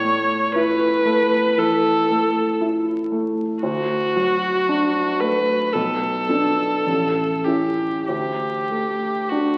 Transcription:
Already playing: A2 C#5
0.04 A3
0.55 E4 B4
1.05 A3
1.58 E3 A4
2.11 A3
2.61 E4
3.12 A3
3.63 D2 F#4
4.16 F#3
4.69 D4
5.20 A3 B4
5.73 B1 A4
6.29 B3 D4
6.87 A1
7.44 C#4 E4 G4
8.07 D2 G4
8.70 A3
9.29 D4 F#4

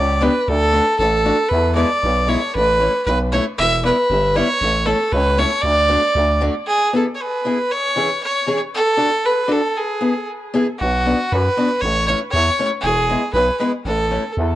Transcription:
Already playing: C#2 D5
0.21 B3 D4 G4 B4
0.41 B4
0.48 D2 A4
0.73 A3 D4 F#4
0.99 A1 A4
1.25 A3 D4 F#4
1.48 E2 B4
1.75 G#3 B3 E4 D5
2.03 B1
2.27 G#3 B3 E4 C#5
2.55 A1 B4
2.80 A3 C#4 E4
3.06 B1 B4
3.32 A3 C#4 E4 C#5
3.58 E1 E5
3.83 G3 B3 E4 B4
4.10 G1
4.35 G3 B3 E4 C#5
4.61 A1
4.86 A3 C#4 E4 A4
5.12 C#2 B4
5.37 A3 C#4 E4 C#5
5.62 D2 D5
5.88 A3 D4 F#4
6.15 D2
6.41 A3 D4 F#4
6.67 G#4
6.93 B3 E4 G#4 A4
7.15 C#5
7.22 B4
7.45 B3 E4 G#4
7.72 C#5
7.96 E3 C#4 E4 G#4
8.23 C#5
8.47 E3 C#4 E4 G#4
8.75 A4
8.97 D4 F#4 A4
9.26 B4
9.48 D4 F#4 A4
9.77 G#4
10.01 B3 E4 G#4
10.54 B3 E4 G#4
10.79 B1 F#4
11.06 B3 D4 F#4
11.32 F#2 B4
11.57 B3 D4 F#4
11.81 A1 C#5
12.08 A3 C#4 E4 C#5
12.31 E2 C#5
12.59 A3 C#4 E4
12.81 E1 G#4
13.09 G#3 B3 E4
13.34 B1 B4
13.59 G#3 B3 E4 B4
13.85 A1 A4
14.11 A3 C#4 E4
14.37 E2

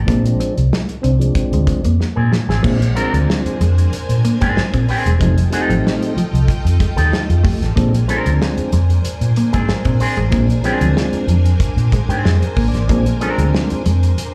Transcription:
0.06 A#1 F3 G#3 A#3 C4 D4, kick, closed hi-hat
0.24 muted clean electric guitar stroke, closed hi-hat
0.40 C4, closed hi-hat
0.58 C2, closed hi-hat
0.73 snare
0.89 closed hi-hat
1.02 C2 C4 D4, closed hi-hat
1.19 F3 G#3 C4 D4, closed hi-hat
1.35 kick, closed hi-hat
1.53 D2 G#3, closed hi-hat
1.67 muted clean electric guitar stroke, kick, closed hi-hat
1.84 F2 A#3, closed hi-hat
2.00 muted clean electric guitar stroke, snare
2.16 A#2 A#3 C4 D4 G#4
2.32 F3, snare
2.49 A1 C4 D4 G#4, snare
2.63 A#1 F3 G#3 A#3 C4 D4 A#4 C5 G#5, kick, crash
2.82 closed hi-hat
2.95 F3 G#3 C4 D4 A#4, muted clean electric guitar stroke, closed hi-hat
3.13 D2 G#3, closed hi-hat
3.30 snare
3.45 muted fingered electric bass stroke, closed hi-hat
3.60 F2 G#3, closed hi-hat
3.78 closed hi-hat
3.92 muted fingered electric bass stroke, closed hi-hat
4.09 A#2, closed hi-hat
4.25 A#3, closed hi-hat
4.41 G#2 C4 D4 G#4, kick, closed hi-hat
4.57 snare
4.73 A#2 C4, kick, closed hi-hat
4.88 C4 D4 G#4, muted clean electric guitar stroke, open hi-hat
5.06 E1 G#3, closed hi-hat
5.19 F1 F3 G3 A3 C4 D#4 F4 A4 D#5 G5, kick, closed hi-hat
5.38 closed hi-hat
5.50 G3 A3 C4 D#4 G4 A4, muted clean electric guitar stroke, closed hi-hat
5.69 A1 F3, closed hi-hat
5.87 snare
6.02 closed hi-hat
6.16 F3, muted fingered electric bass stroke, closed hi-hat
6.33 C2, closed hi-hat
6.48 kick, closed hi-hat
6.65 F2, closed hi-hat
6.80 G#3, kick, closed hi-hat
6.96 D#2 D#4 G4 A4, closed hi-hat
7.12 D#4, snare
7.29 F2 F4, closed hi-hat
7.43 A3 G4, kick, open hi-hat
7.62 A1 A4, snare, closed hi-hat
7.76 A#1 F3 G#3 A#3 C4 D4 A#4 C5 G#5, kick, closed hi-hat
7.94 closed hi-hat
8.08 F3 G#3 C4 C#4 D4 A#4, muted clean electric guitar stroke, closed hi-hat
8.17 D4
8.26 D2 G#3, closed hi-hat
8.42 snare
8.58 muted fingered electric bass stroke, closed hi-hat
8.72 F2 G#3, closed hi-hat
8.90 closed hi-hat
9.05 muted fingered electric bass stroke, closed hi-hat
9.21 A#2, closed hi-hat
9.36 A#3, closed hi-hat
9.52 G#2 C4 D4 G#4, kick, closed hi-hat
9.69 snare
9.85 A#2 C4, kick, closed hi-hat
10.00 C4 D4 G#4, muted clean electric guitar stroke, open hi-hat
10.17 A1 G#3, closed hi-hat
10.30 A#1 F3 G#3 A#3 C4 D4, kick, closed hi-hat
10.50 closed hi-hat
10.63 F3 G#3 C4 C#4 D4 G#4, muted clean electric guitar stroke, closed hi-hat
10.71 D4
10.81 D2 F3, closed hi-hat
10.97 snare
11.13 muted fingered electric bass stroke, closed hi-hat
11.28 F2 F3, closed hi-hat
11.45 closed hi-hat
11.60 kick, closed hi-hat
11.77 A#2, closed hi-hat
11.92 G#3, kick, closed hi-hat
12.09 G#2 C4 D4 G#4, closed hi-hat
12.25 F2 G#4, snare
12.42 A#4, closed hi-hat
12.56 G#1 A#3, kick, open hi-hat
12.68 D5
12.73 A1, snare, closed hi-hat
12.89 A#1 F3 G#3 A#3 C4 D4, kick, closed hi-hat
13.06 closed hi-hat
13.20 F3 G#3 C4 D4 A#4, muted clean electric guitar stroke, closed hi-hat
13.38 D2 G#3, closed hi-hat
13.55 snare
13.70 muted fingered electric bass stroke, closed hi-hat
13.86 F2 G#3, closed hi-hat
14.03 closed hi-hat
14.18 muted fingered electric bass stroke, closed hi-hat

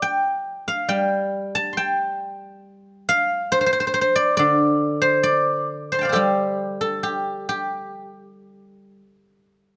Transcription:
Already playing: F4 G4 A4 C5 D5
0.02 G5
0.68 F5
0.89 G3 G5
1.55 A5
1.73 C6
1.77 G5 A5
3.09 F5
3.52 C5
3.61 C5
3.66 C5
3.73 C5
3.80 C5
3.87 C5
3.94 C5
4.01 C5
4.16 D5
4.37 D3 D5
5.02 C5
5.23 D5
5.92 C5 C6
5.99 G5 A5
6.03 D5 F5
6.09 A4 C5
6.13 G3 G4
6.81 A4
7.03 G4
7.49 G4

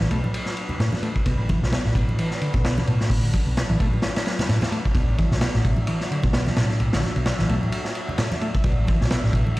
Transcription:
Already playing: F#3 D4 B4
0.00 A1 E3, snare
0.11 B1 A3, ride
0.24 A2, high conga
0.34 ride
0.46 snare
0.57 ride
0.69 muted fingered electric bass stroke, low conga
0.80 A2, snare, ride
0.92 snare, high conga
1.03 A3, ride
1.16 kick
1.26 B1 B2, kick, ride
1.39 A1
1.49 E3, kick, ride, high conga
1.62 B1 A2, snare
1.72 B3, snare, ride
1.85 A1 A2, snare
1.95 B1, kick, ride
2.09 high conga
2.19 E3, ride
2.31 snare
2.41 D3, ride
2.54 B1 A2, kick, low conga
2.65 B3, snare, ride
2.78 snare, high conga
2.87 A2 B2, ride
3.01 snare
3.10 B1, kick, open hi-hat
3.23 A1 D3
3.33 kick, ride, high conga
3.47 B1
3.57 snare, ride
3.69 A1 E3, ride
3.80 B1 A3, kick, ride
3.92 A2, high conga
4.02 snare, ride
4.16 snare, ride
4.26 snare, ride
4.39 muted fingered electric bass stroke, snare, ride, low conga
4.49 A2, snare, ride
4.61 snare, ride, high conga
4.72 A3, ride
4.85 kick
4.95 B1 B2 E5, kick, ride
5.08 A1
5.18 E3, kick, ride, high conga
5.31 B1 A2, snare
5.41 B3, snare, ride
5.54 A1 A2, snare
5.65 B1, kick, ride
5.77 high conga
5.87 E3, ride
6.01 snare
6.11 D3, ride
6.23 B1 A2, kick, low conga
6.33 B3, snare, ride
6.47 snare, high conga
6.57 A2 B2, snare, ride
6.70 snare
6.80 B1, ride
6.93 A1 D3, snare, ride
7.04 snare, high conga
7.16 B1, ride
7.26 snare, ride
7.39 A1 E3, snare
7.49 B1 A3, ride
7.62 A2, high conga
7.72 ride
7.85 snare
7.95 ride
8.08 muted fingered electric bass stroke, low conga
8.18 A2, snare, ride
8.31 snare, high conga
8.41 A3, ride
8.55 kick
8.64 B1 B2, kick, ride
8.77 A1
8.87 E3, kick, ride, high conga
9.01 B1 A2, snare
9.10 B3, snare, ride
9.23 A1 A2, snare
9.33 B1, kick, ride
9.47 high conga
9.57 ride

